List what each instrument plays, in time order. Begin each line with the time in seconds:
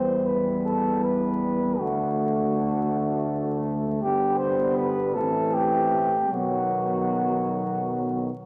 Already playing: tuba E2, euphonium E3, trombone section G3, french horn section B3, cornet C5
0.25 cornet B4
0.65 cornet A4
1.03 cornet B4
1.78 tuba D2, euphonium A3, trombone section A3, french horn section D4, cornet F#4
4.02 tuba G1, euphonium G3, trombone section B3, french horn section D4, cornet G4
4.37 cornet C5
4.76 cornet B4
5.14 tuba A1, euphonium E3, trombone section A3, french horn section C4, cornet A4
5.54 cornet G4
6.30 tuba B1, euphonium D#3, trombone section F#3, french horn section B3, cornet F#4